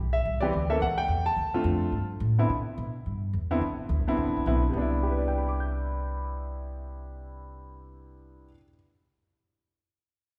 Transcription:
0.00 0.24 B1 medium
0.13 0.39 E5 medium
0.25 0.52 C2 medium
0.40 0.52 E3 medium
0.40 0.52 B3 medium
0.40 0.52 C4 medium
0.40 0.52 G4 medium
0.40 0.67 D5 medium
0.53 0.80 D2 medium
0.70 0.80 E3 medium
0.70 0.80 A#3 medium
0.70 0.80 C#4 medium
0.70 0.80 A4 medium
0.70 0.75 E5 medium
0.81 1.08 C#2 medium
0.81 0.97 F#5 loud
0.98 1.27 G5 medium
1.08 1.36 E2 medium
1.26 2.06 A5 loud
1.36 1.63 D2 medium
1.54 1.91 D3 medium
1.54 1.91 A3 medium
1.54 1.91 C4 medium
1.54 1.91 F4 medium
1.64 1.91 F2 loud
1.92 2.20 G2 medium
2.20 2.48 A2 medium
2.38 2.49 D3 medium
2.38 2.48 B3 medium
2.38 2.49 C4 medium
2.38 2.49 E4 medium
2.49 2.77 C3 medium
2.78 3.05 B2 medium
3.06 3.33 G2 medium
3.33 3.61 E2 medium
3.51 3.61 D3 medium
3.51 3.61 B3 medium
3.51 3.61 C4 medium
3.51 3.61 E4 medium
3.61 3.77 C2 medium
3.79 muted upright bass stroke soft
3.89 3.99 D2 medium
3.99 4.07 C2 soft
4.07 4.17 B1 medium
4.07 4.44 D3 medium
4.07 4.44 B3 medium
4.07 4.44 C4 medium
4.07 4.45 E4 medium
4.17 4.29 E2 medium
4.27 4.36 C2 medium
4.37 4.45 B1 medium
4.46 4.73 B1 medium
4.46 4.62 D3 medium
4.46 4.62 B3 medium
4.46 4.62 C4 medium
4.46 4.62 E4 medium
4.69 8.46 C3 medium
4.69 8.48 B3 medium
4.74 8.44 C2 medium
4.74 8.50 D4 medium
4.81 8.52 E4 medium
5.03 8.45 G4 soft
5.11 8.49 B4 soft
5.18 8.53 D5 soft
5.28 8.57 G5 soft
5.38 8.62 B5 soft
5.49 8.68 D6 soft
5.60 8.74 G6 soft

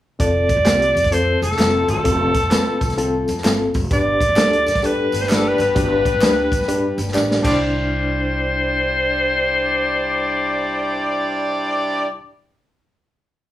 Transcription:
0.19 0.45 F1 medium
0.19 0.50 C4 medium
0.19 0.51 F4 medium
0.19 0.51 A4 medium
0.19 1.15 D5 loud
0.19 kick loud
0.19 closed hi-hat medium
0.19 tambourine medium
0.49 kick medium
0.49 closed hi-hat medium
0.49 tambourine soft
0.57 0.64 F1 medium
0.65 0.90 C2 medium
0.65 0.97 C4 medium
0.65 0.97 F4 medium
0.65 0.97 G4 medium
0.65 snare loud
0.65 clap medium
0.65 closed hi-hat loud
0.65 tambourine medium
0.82 closed hi-hat medium
0.95 1.34 F2 loud
0.95 closed hi-hat medium
0.95 tambourine medium
1.04 kick medium
1.04 snare soft
1.04 closed hi-hat soft
1.11 3.70 F3 medium
1.11 3.70 A3 medium
1.11 1.43 C4 medium
1.11 3.70 C4 medium
1.11 1.43 F4 medium
1.11 1.43 A4 medium
1.11 3.70 A4 medium
1.11 1.42 C5 loud
1.11 closed hi-hat medium
1.11 tambourine soft
1.42 1.56 F1 medium
1.42 1.86 A4 medium
1.42 closed hi-hat medium
1.42 tambourine medium
1.52 snare soft
1.58 1.84 F1 medium
1.58 1.90 C4 medium
1.58 1.90 F4 medium
1.58 1.90 A4 medium
1.58 snare loud
1.58 clap medium
1.58 closed hi-hat medium
1.58 tambourine medium
1.88 2.02 G1 loud
1.88 3.24 A4 medium
1.88 closed hi-hat medium
1.88 tambourine soft
2.04 2.30 F1 loud
2.04 2.36 C4 medium
2.04 2.36 F4 medium
2.04 2.36 A4 medium
2.04 kick loud
2.04 closed hi-hat medium
2.04 tambourine medium
2.34 kick medium
2.34 closed hi-hat medium
2.34 tambourine soft
2.43 2.50 F1 medium
2.50 2.82 C4 medium
2.50 2.82 F4 medium
2.50 2.82 B4 medium
2.50 snare loud
2.50 clap medium
2.50 closed hi-hat loud
2.50 tambourine medium
2.66 muted upright bass stroke medium
2.81 3.20 C2 medium
2.81 kick medium
2.81 closed hi-hat medium
2.81 tambourine medium
2.90 snare soft
2.90 closed hi-hat soft
2.97 3.29 C4 medium
2.97 3.29 F4 medium
2.97 3.29 A4 loud
2.97 closed hi-hat medium
2.97 tambourine soft
3.28 3.42 F2 loud
3.28 closed hi-hat medium
3.28 tambourine medium
3.38 snare soft
3.44 3.69 G1 medium
3.44 3.75 C4 medium
3.44 3.75 F4 medium
3.44 3.75 A4 loud
3.44 snare loud
3.44 clap medium
3.44 closed hi-hat medium
3.44 tambourine medium
3.74 3.88 F1 loud
3.74 kick medium
3.74 open hi-hat soft
3.74 tambourine medium
3.91 4.16 G1 loud
3.91 4.22 D4 medium
3.91 4.21 G4 medium
3.91 4.22 B4 medium
3.91 4.87 D5 loud
3.91 kick loud
3.91 closed hi-hat medium
3.91 tambourine medium
4.20 kick medium
4.20 closed hi-hat medium
4.20 tambourine soft
4.29 4.36 G1 medium
4.36 4.62 D2 medium
4.36 4.67 D4 medium
4.36 4.67 G4 medium
4.36 4.67 A4 medium
4.36 snare loud
4.36 clap medium
4.36 closed hi-hat medium
4.36 tambourine medium
4.53 closed hi-hat medium
4.67 5.06 G2 medium
4.67 snare soft
4.67 closed hi-hat medium
4.67 tambourine medium
4.75 kick medium
4.75 snare soft
4.75 closed hi-hat soft
4.82 7.40 G3 medium
4.82 7.40 B3 medium
4.82 5.14 D4 medium
4.82 7.40 D4 medium
4.82 5.14 G4 medium
4.82 5.14 A4 medium
4.82 7.40 B4 medium
4.82 5.23 B4 loud
4.82 closed hi-hat medium
4.82 tambourine soft
5.12 5.52 G1 medium
5.12 closed hi-hat medium
5.12 tambourine medium
5.21 5.29 C5 medium
5.21 snare soft
5.27 5.60 D4 medium
5.27 5.60 G4 medium
5.27 5.38 B4 medium
5.27 5.60 D5 medium
5.27 clap medium
5.27 closed hi-hat medium
5.27 tambourine medium
5.32 snare loud
5.36 5.50 A4 medium
5.48 5.59 B4 medium
5.58 5.73 G1 loud
5.58 7.12 B4 loud
5.58 closed hi-hat medium
5.58 tambourine soft
5.75 6.01 G1 loud
5.75 6.06 D4 medium
5.75 6.06 G4 medium
5.75 6.06 B4 medium
5.75 kick loud
5.75 closed hi-hat medium
5.75 tambourine medium
6.05 kick medium
6.05 closed hi-hat medium
6.14 6.21 G1 loud
6.21 6.47 D2 loud
6.21 6.53 D4 medium
6.21 6.53 G4 medium
6.21 6.53 B4 loud
6.21 snare loud
6.21 clap medium
6.21 closed hi-hat loud
6.21 tambourine loud
6.52 6.90 G2 medium
6.52 kick medium
6.52 closed hi-hat medium
6.52 tambourine medium
6.62 snare soft
6.68 6.99 D4 medium
6.68 6.99 G4 medium
6.68 6.99 B4 loud
6.68 closed hi-hat loud
6.68 tambourine soft
6.98 7.12 G1 loud
6.98 closed hi-hat medium
6.98 tambourine medium
7.08 snare soft
7.14 7.39 A1 medium
7.14 7.41 D4 medium
7.14 7.44 G4 medium
7.14 7.44 D5 loud
7.14 snare medium
7.14 clap medium
7.14 tambourine medium
7.31 snare medium
7.43 12.17 C2 loud
7.43 12.07 G3 medium
7.43 12.15 D4 medium
7.43 12.07 D4 medium
7.43 12.07 E4 medium
7.43 12.17 E4 medium
7.43 12.07 C5 loud
7.43 12.19 C5 medium
7.43 12.07 D5 loud
7.43 kick loud
7.43 crash medium
7.43 tambourine medium

